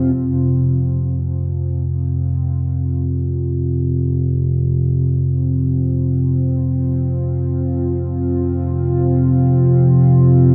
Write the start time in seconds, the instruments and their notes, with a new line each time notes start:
Already playing: synth drone F2 C3, analog synth pad F3 C4 F4
0.14 synth drone F2 C3, analog synth pad F3
0.98 analog synth pad C4
1.12 analog synth pad F4